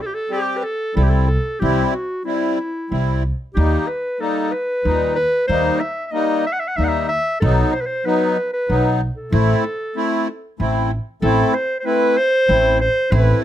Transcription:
0.02 clarinet A4
0.06 clarinet G4
0.14 clarinet A4
0.29 accordion G3 C4 G4, clarinet G4
0.57 clarinet B4
0.63 clarinet A4
0.95 upright bass C2, accordion G3 C4 E4, clarinet A4
1.03 clarinet G4
1.09 clarinet A4
1.27 clarinet A4
1.60 upright bass C2, accordion G3 C4 E4, clarinet G4
1.87 clarinet G4
1.92 clarinet F#4
2.25 accordion G3 C4 E4, clarinet E4
2.90 upright bass C2, accordion G3 C4 E4
3.54 upright bass D#2, accordion G3 A#3 D#4, clarinet G4
3.87 clarinet B4
4.20 accordion G3 A#3 D#4, clarinet A4
4.51 clarinet B4
4.84 upright bass D#2, accordion A#2 G3 D#4
5.15 clarinet B4
5.47 upright bass D#2, accordion G3 A#3 D#4, clarinet C5
5.80 clarinet E5
6.07 clarinet E5
6.11 accordion G3 A#3 D#4, clarinet D#5
6.47 clarinet E5
6.53 clarinet F#5
6.60 clarinet E5
6.68 clarinet F#5
6.76 upright bass D#2, accordion G3 A#3 D#4, clarinet E5
6.84 clarinet E5 F#5
7.09 clarinet E5
7.40 upright bass B1, accordion F#3 B3 D#4, clarinet A4
7.72 clarinet C5
7.81 clarinet B4
7.86 clarinet C5
8.05 accordion F#3 B3 D#4, clarinet B4
8.53 clarinet B4
8.69 upright bass B1, accordion F#3 B3 D#4
9.17 clarinet A4
9.32 upright bass A1, accordion A3 C4 E4
9.96 accordion A3 C4 E4
10.59 upright bass A1, accordion A3 C4 E4
11.22 upright bass A1, accordion A3 C4 E4, clarinet A4
11.54 clarinet C5
11.79 clarinet C5
11.85 accordion A3 C4 E4, clarinet B4
12.17 clarinet C5
12.48 upright bass A1, accordion A3 C4 E4
12.81 clarinet C5
13.11 upright bass A1, accordion A3 C4 E4, clarinet B4

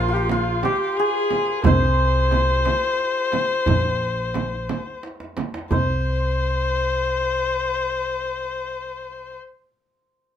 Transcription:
Already playing: upright bass A#1, kamancheh F4, santur G#4 A#4 C5
0.01 santur F4
0.08 santur F4
0.13 santur F4, kamancheh G4
0.29 kamancheh F4, santur F4, tombak tek, frame drum
0.63 kamancheh G4, santur G4, tombak tek, frame drum
0.97 kamancheh G#4, santur G#4, tombak ka
1.31 tombak tek, frame drum
1.64 upright bass C2, kamancheh C5, santur C5, tombak dum, frame drum
2.31 tombak tek, frame drum
2.65 tombak tek, frame drum
2.99 tombak ka
3.32 tombak tek, frame drum
3.66 upright bass A#1, tombak dum, frame drum
4.01 tombak ka
4.34 tombak tek, frame drum
4.52 tombak ka
4.69 tombak tek, frame drum
4.86 tombak ka
5.03 tombak tek
5.20 tombak ka
5.37 tombak tek, frame drum
5.54 tombak ka
5.71 upright bass C2, kamancheh C5, santur C5, frame drum, tombak dum

